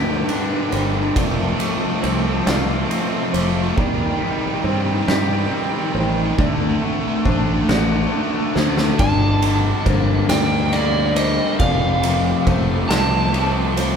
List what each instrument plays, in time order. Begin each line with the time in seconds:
Already playing: fingered electric bass D2, clean electric guitar G2 A#3 D4 G4, ambient pad G3 D4 A#4 G5, felt piano D5
0.00 distorted electric guitar G2 D3
0.08 distorted electric guitar G2 D3
0.15 distorted electric guitar G2 D3
0.23 distorted electric guitar G2 D3
0.29 distorted electric guitar G2 D3, clean electric guitar D4, ride
0.39 distorted electric guitar G2 D3
0.46 distorted electric guitar G2 D3
0.54 distorted electric guitar G2 D3
0.61 distorted electric guitar G2 D3
0.70 fingered electric bass G1, distorted electric guitar G2 D3, clean electric guitar G3, felt piano C5, ride
0.77 distorted electric guitar G2 D3
0.85 distorted electric guitar G2 D3
0.92 distorted electric guitar G2 D3
1.00 distorted electric guitar G2 D3
1.08 distorted electric guitar G2 D3
1.15 fingered electric bass F1, clean electric guitar F2, distorted electric guitar F3 A3, ambient pad F3 C4 A4 F5, felt piano D5, kick, ride
1.24 distorted electric guitar F3 A3
1.30 distorted electric guitar F3 A3
1.39 distorted electric guitar F3 A3
1.47 distorted electric guitar F3 A3
1.54 distorted electric guitar F3 A3
1.59 distorted electric guitar F3, clean electric guitar A3, ride
1.63 distorted electric guitar A3
1.70 distorted electric guitar F3 A3
1.77 distorted electric guitar F3 A3
1.85 distorted electric guitar F3 A3
1.93 distorted electric guitar F3 A3
2.00 fingered electric bass C2, distorted electric guitar F3 A3, clean electric guitar C4, felt piano C5, ride
2.08 distorted electric guitar F3 A3
2.15 distorted electric guitar F3 A3
2.24 distorted electric guitar F3 A3
2.30 distorted electric guitar F3 A3
2.39 distorted electric guitar F3 A3
2.46 fingered electric bass C2, distorted electric guitar F3 A3, clean electric guitar F4, felt piano D5, snare, ride
2.55 distorted electric guitar F3 A3
2.63 distorted electric guitar F3 A3
2.69 distorted electric guitar F3 A3
2.77 distorted electric guitar F3 A3
2.85 distorted electric guitar F3 A3
2.90 distorted electric guitar F3 A3, clean electric guitar C4, ride
3.00 distorted electric guitar F3 A3
3.07 distorted electric guitar F3 A3
3.16 distorted electric guitar F3 A3
3.23 distorted electric guitar F3 A3
3.30 fingered electric bass F1, distorted electric guitar F3 A3, clean electric guitar F3, felt piano C5, ride
3.39 distorted electric guitar F3 A3
3.46 distorted electric guitar F3 A3
3.54 distorted electric guitar F3 A3
3.62 distorted electric guitar F3 A3
3.69 distorted electric guitar F3 A3
3.77 fingered electric bass D#2, distorted electric guitar D#3 G3, ambient pad D#3 G4 G5, clean electric guitar D#3, felt piano D5, kick
3.85 distorted electric guitar D#3 G3
3.93 distorted electric guitar D#3 G3
4.00 distorted electric guitar D#3 G3
4.09 distorted electric guitar D#3 G3
4.16 distorted electric guitar D#3 G3
4.21 distorted electric guitar D#3, clean electric guitar G3
4.25 distorted electric guitar G3
4.31 distorted electric guitar D#3 G3
4.39 distorted electric guitar D#3 G3
4.47 distorted electric guitar D#3 G3
4.54 distorted electric guitar D#3 G3
4.61 fingered electric bass G2, distorted electric guitar D#3 G3, clean electric guitar C4, felt piano C5
4.69 distorted electric guitar D#3 G3
4.78 distorted electric guitar D#3 G3
4.85 distorted electric guitar D#3 G3
4.93 distorted electric guitar D#3 G3
5.00 distorted electric guitar D#3 G3
5.08 fingered electric bass G2, distorted electric guitar D#3 G3, clean electric guitar G4, felt piano D5, snare
5.15 distorted electric guitar D#3 G3
5.23 distorted electric guitar D#3 G3
5.31 distorted electric guitar D#3 G3
5.39 distorted electric guitar D#3 G3
5.46 distorted electric guitar D#3 G3
5.51 distorted electric guitar D#3 G3, clean electric guitar C4
5.61 distorted electric guitar D#3 G3
5.69 distorted electric guitar D#3 G3
5.77 distorted electric guitar D#3 G3
5.85 distorted electric guitar D#3 G3
5.92 fingered electric bass A1, distorted electric guitar D#3 G3, clean electric guitar D#3, felt piano C5
6.00 distorted electric guitar D#3 G3
6.07 distorted electric guitar D#3 G3
6.15 distorted electric guitar D#3 G3
6.23 distorted electric guitar D#3 G3
6.30 distorted electric guitar D#3 G3
6.38 fingered electric bass D2, distorted electric guitar D3 A3, ambient pad D3 D4 A4 F#5, clean electric guitar D3, felt piano D5, kick
6.45 distorted electric guitar D3 A3
6.54 distorted electric guitar D3 A3
6.61 distorted electric guitar D3 A3
6.68 distorted electric guitar D3 A3
6.77 distorted electric guitar D3 A3
6.82 distorted electric guitar D3 A3, clean electric guitar A3
6.91 distorted electric guitar D3 A3
7.00 distorted electric guitar D3 A3
7.07 distorted electric guitar D3 A3
7.14 distorted electric guitar D3 A3
7.20 distorted electric guitar D3 A3
7.25 fingered electric bass A1, clean electric guitar D4, felt piano C5, kick
7.30 distorted electric guitar D3 A3
7.38 distorted electric guitar D3 A3
7.45 distorted electric guitar D3 A3
7.53 distorted electric guitar D3 A3
7.60 distorted electric guitar D3 A3
7.68 fingered electric bass A1, distorted electric guitar D3 A3, clean electric guitar F#4, felt piano D5, snare
7.75 distorted electric guitar D3 A3
7.83 distorted electric guitar D3 A3
7.91 distorted electric guitar D3 A3
8.00 distorted electric guitar D3 A3
8.06 distorted electric guitar D3 A3
8.12 distorted electric guitar D3 A3, clean electric guitar D4
8.21 distorted electric guitar D3 A3
8.29 distorted electric guitar D3 A3
8.37 distorted electric guitar D3 A3
8.45 distorted electric guitar D3 A3
8.53 fingered electric bass D2, distorted electric guitar D3 A3, clean electric guitar D3, felt piano C5, snare
8.61 distorted electric guitar D3 A3
8.68 distorted electric guitar D3 A3
8.75 distorted electric guitar D3 A3, snare
8.82 distorted electric guitar D3 A3
8.91 distorted electric guitar D3 A3
8.99 fingered electric bass G1, distorted electric guitar G2 D3 G3 A#3 D4, clean electric guitar G2, ambient pad D3 G4 A#4 G5, felt piano D5, electric slide guitar A5, kick, ride
9.42 clean electric guitar D3, distorted electric guitar G3 A#3 D4, ride
9.85 fingered electric bass G1, distorted electric guitar D3 G3 A#3 D4, clean electric guitar A#3, felt piano C5, kick, ride
10.29 fingered electric bass D2, distorted electric guitar G3 A#3 D4, felt piano D5, electric slide guitar G5, snare, ride
10.72 distorted electric guitar D3 G3 A#3 D4, clean electric guitar A#3, electric slide guitar D5, ride
11.16 clean electric guitar G3, distorted electric guitar G3 A#3 D4, felt piano C5, electric slide guitar D#5, ride
11.59 fingered electric bass F1, distorted electric guitar F2 C3 F3 A3 C4, clean electric guitar F2, ambient pad F4 A4 C5 A5, felt piano D5, electric slide guitar F5, kick, ride
12.03 clean electric guitar C3, distorted electric guitar F3 A3 C4, ride
12.46 fingered electric bass F1, distorted electric guitar C3 F3 A3 C4, clean electric guitar A3, felt piano C5, kick, ride
12.89 fingered electric bass C2, distorted electric guitar F3 A3 C4, clean electric guitar C4, felt piano D5, electric slide guitar A5, snare, ride
13.33 distorted electric guitar C3 F3 A3 C4, clean electric guitar A3, ride
13.77 clean electric guitar F3, distorted electric guitar F3 A3 C4, felt piano C5, ride